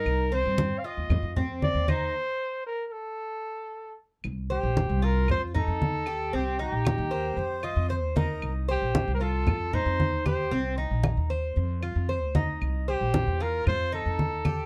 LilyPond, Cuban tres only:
\new Staff \with { instrumentName = "Cuban tres" } { \time 4/4 \key c \dorian \tempo 4 = 115 ees'8 c'4 f'4 c'4 ees'8 | r1 | r8 c''4 f'4 ees'4 g'8 | c'8 ees'4 c''4 f'8 c''8 ees'8~ |
ees'8 c''4 f'4 ees'4 g'8 | c'8 ees'4 c''4 f'8 c''8 ees'8~ | ees'8 c''4 f'4 ees'4 g'8 | }